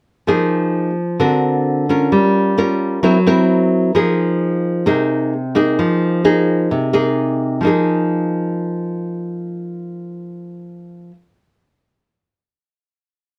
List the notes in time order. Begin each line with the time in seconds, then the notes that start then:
0.27 F3 A#3 D#4 G#4
1.20 D3 C4 F#4 A#4
1.89 C#4 F4 A#4
2.12 G3
2.58 C#4 F4 A#4
3.03 F#3 C4 E4 A#4
3.27 C4 E4 A#4
3.95 F3 A#3 D#4 G#4
4.86 C3 A#3 D#4 G#4
5.55 A#3 D#4 G#4
5.79 F3
6.24 A#3 D#4 G#4
6.71 C3
6.93 A#3 D#4 G#4
7.61 F3 A#3 D#4
7.67 G#4